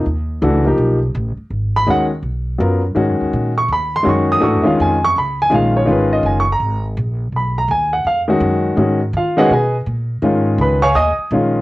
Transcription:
0.06 upright bass D#2
0.42 upright bass C#2, grand piano E3 A3 D4 F#4
0.65 grand piano F3 A#3 D#4 G4
0.78 upright bass B1
1.15 upright bass A1
1.37 muted upright bass stroke
1.50 upright bass G#1
1.77 grand piano B5
1.87 upright bass D#2, grand piano D#3 G#3 C#4 F#4 F#5
2.23 upright bass B1
2.58 upright bass F#2, grand piano F#3 B3 F4 A#4
2.95 upright bass G#2, grand piano D#3 G#3 C#4 F#4
3.09 upright bass F#2
3.21 upright bass D#2
3.33 upright bass A#2
3.58 grand piano C#6
3.68 upright bass D#2
3.73 grand piano B5
3.96 grand piano C6
4.03 upright bass F#2, grand piano D#3 G#3 C#4 F#4
4.09 grand piano C#6
4.32 grand piano D#6
4.40 upright bass G#2, grand piano E3 A3 D4 F#4 C#6
4.55 upright bass F2
4.62 grand piano D#3 G#3 C#4 F4 E5
4.67 upright bass D#2, grand piano F5
4.80 upright bass F2, grand piano G#5
5.04 grand piano C#6
5.16 upright bass C#2, grand piano B5
5.42 grand piano G#5
5.50 upright bass A#1, grand piano D#3 G#3 C#4 F4
5.54 grand piano F5
5.77 grand piano C#5
5.85 upright bass G#1, grand piano D#3 G#3 C#4 F4
5.91 grand piano B4
6.13 grand piano D#5
6.23 upright bass F#1, grand piano G#5
6.40 grand piano C#6
6.52 grand piano A#5
6.60 upright bass G#1
6.97 upright bass A#1
7.32 upright bass B1
7.36 grand piano B5
7.58 grand piano A#5
7.68 upright bass D#2, grand piano G#5
7.93 grand piano F#5
8.04 upright bass F2, grand piano F5
8.28 grand piano D#3 G#3 C#4 F#4
8.40 upright bass F#2
8.76 upright bass G#2, grand piano D#3 G#3 C#4 F#4
9.13 upright bass D#3, grand piano F5
9.17 grand piano F4
9.37 grand piano D#3 G#3 C#4 F#4 G#4 B4 D#5 F#5
9.50 upright bass B2, grand piano G#4 B4 D#5 G#5
9.86 upright bass A#2
10.22 upright bass G#2, grand piano D#3 G#3 C#4 F4
10.58 upright bass C#2, grand piano B4 B5
10.82 grand piano C#5 F5 G#5 C#6
10.95 upright bass D#2, grand piano D#5 G#5 D#6
11.18 muted upright bass stroke
11.31 upright bass A#1, grand piano D#3 G#3 C#4 F4

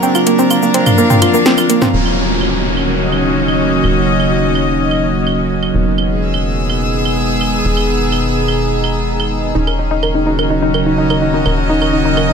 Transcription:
Already playing: ambient pad A#3, string section A#4
0.03 ambient pad D3 F3 F4, synth pluck C4 C5, string section D4, shaker
0.15 synth pluck F4 F5, claves, shaker
0.27 synth pluck A#3 A#4, closed hi-hat, shaker
0.39 synth pluck C4 C5, shaker
0.50 synth pluck F4 F5, claves, shaker
0.63 synth pluck A#3 A#4, shaker
0.74 synth pluck C4 C5, string section F5, closed hi-hat, shaker
0.86 synth pluck F4 F5, mid tom, claves, shaker
0.98 synth pluck A#3 A#4, shaker
1.10 synth pluck C4 C5, mid tom, shaker
1.22 synth pluck F4 F5, closed hi-hat, claves, shaker
1.34 synth pluck A#3 A#4, shaker
1.46 synth pluck C4 C5, snare, shaker
1.58 synth pluck F4 F5, claves, shaker
1.70 synth pluck A#3 A#4, closed hi-hat, shaker
1.82 synth pluck C4 C5, snare, mid tom, shaker
1.93 analog synth bass D#1, ambient pad C#3 F#3 A#3 D#4, synth drone D#3 D#4, string section C#4, downlifter
2.05 claves
2.10 string section F#4
2.41 claves
2.77 claves
3.03 string section D#5
3.12 claves
3.48 claves
3.84 analog synth bass D#1, claves
4.20 claves
4.55 claves
4.91 claves
5.27 claves
5.63 claves
5.74 analog synth bass E1, ambient pad B2 G#3, string section B3
5.98 claves
6.08 string section G#4
6.26 string section E6
6.34 claves
6.69 claves
7.05 claves
7.41 claves
7.65 analog synth bass E1
7.77 claves
8.12 claves
8.48 claves
8.84 claves
9.20 claves
9.55 analog synth bass D#1, ambient pad C#3 F#3 A#3 D#4, string section C#4, synth pluck D#4
9.67 synth pluck A#4, claves
9.79 synth pluck D#4
9.91 synth pluck D#4
10.03 synth pluck A#4, claves
10.15 synth pluck D#4
10.22 string section F#4
10.27 synth pluck D#4
10.39 synth pluck A#4, claves
10.50 synth pluck D#4
10.62 synth pluck D#4
10.74 synth pluck A#4, claves
10.86 synth pluck D#4, string section D#5
10.98 synth pluck D#4
11.10 synth pluck A#4, claves
11.22 synth pluck D#4
11.34 synth pluck D#4
11.46 analog synth bass D#1, ambient pad C#4, synth pluck A#4, claves
11.58 synth pluck D#4
11.70 synth pluck D#4
11.82 synth pluck A#4, claves
11.93 synth pluck D#4
12.05 synth pluck D#4
12.17 synth pluck A#4, claves
12.29 synth pluck D#4

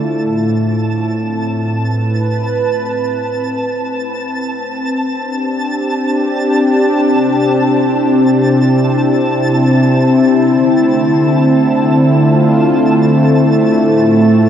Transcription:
Already playing: analog synth pad D3 A3 E4 F4 C5, synth texture A5
0.23 analog synth pad A2
0.90 analog synth pad C4
1.73 analog synth pad B4
5.14 analog synth pad D4 G4
7.06 analog synth pad C3
7.57 analog synth pad E4
10.49 analog synth pad D3
10.65 analog synth pad A3
12.03 analog synth pad F4
13.84 analog synth pad A2

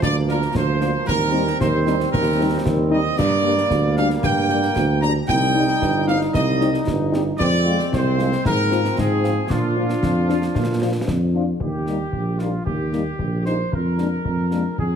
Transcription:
Already playing: trombone section F3
0.01 tuba D2, trombone section A#3, trumpet section D5, concert bass drum, snare
0.28 french horn section A#3 D4 F4, trumpet section A#4, snare
0.42 snare
0.55 tuba D2, trumpet section C5, concert bass drum, snare
0.81 french horn section A#3 D4 F4, snare
1.07 tuba D#2, trombone section G3 C4, trumpet section A#4, concert bass drum, snare
1.32 french horn section G3 C4 D#4
1.47 snare
1.59 tuba D#2, trumpet section C5, concert bass drum, snare
1.85 french horn section G3 C4 D#4, snare
2.00 snare
2.11 tuba D#2, trumpet section A#4, concert bass drum, snare
2.39 french horn section G3 C4 D#4
2.65 tuba D#2, concert bass drum, snare
2.90 french horn section G3 C4 D#4, trumpet section D#5
3.17 tuba G2, trombone section G3 A#3, trumpet section D5, concert bass drum, snare, crash
3.42 french horn section G3 A#3 D4
3.58 snare
3.70 tuba D2, concert bass drum, snare
3.96 french horn section G3 A#3 D4, trumpet section F5, snare
4.10 snare
4.22 tuba G2, trumpet section G5, concert bass drum, snare
4.49 french horn section G3 A#3 D4, snare
4.63 snare
4.75 tuba D2, concert bass drum, snare
5.00 french horn section G3 A#3 D4, trumpet section A#5, snare
5.27 tuba C2, trombone section G3 D#4, trumpet section G5, concert bass drum, snare
5.54 french horn section G3 C4 D#4
5.68 snare
5.82 tuba G1, concert bass drum, snare
6.06 french horn section G3 C4 D#4, trumpet section F5, snare
6.21 snare
6.33 tuba C2, trumpet section D#5, concert bass drum, snare
6.59 french horn section G3 C4 D#4, snare
6.74 snare
6.87 tuba G1, concert bass drum, snare
7.12 french horn section G3 C4 D#4, snare
7.38 tuba F2, trombone section G#3 C4, trumpet section D5, concert bass drum, snare, crash
7.65 french horn section G#3 C4 F4
7.79 snare
7.92 tuba C2, trumpet section C5, concert bass drum, snare
8.17 french horn section G#3 C4 F4, snare
8.32 snare
8.45 tuba G#2, trombone section F3, trumpet section A#4, concert bass drum, snare
8.71 french horn section F3 C4 F4, snare
8.85 snare
8.98 tuba G#2, trumpet section G#4, concert bass drum, snare
9.23 french horn section F3 C4 F4, snare
9.50 tuba A#2, trombone section F3 D4, trumpet section F4, concert bass drum, snare
9.76 french horn section F3 D4 F4
9.89 snare
10.03 tuba F2, concert bass drum, snare
10.28 french horn section F3 D4 F4, snare
10.42 snare
10.55 tuba A#2, concert bass drum, snare
10.80 french horn section F3 D4 F4
11.08 tuba F2, concert bass drum, snare
11.34 french horn section F3 D4 F4
11.60 tuba D#2, trumpet section G4, concert bass drum
11.87 french horn section G3 A#3 D#4, snare
12.12 tuba A#1, concert bass drum
12.38 french horn section G3 A#3 D#4, trumpet section F4, snare
12.64 tuba D#2, trumpet section G4, concert bass drum
12.93 french horn section G3 A#3 D#4, snare
13.19 tuba A#1, concert bass drum
13.44 french horn section G3 A#3 D#4, trumpet section C5, snare
13.72 tuba F2, trumpet section A#4, concert bass drum
13.98 french horn section G#3 A#3 D4, snare
14.25 tuba F2, concert bass drum
14.51 french horn section G#3 A#3 D4, snare
14.78 tuba F2, trumpet section G#4, concert bass drum

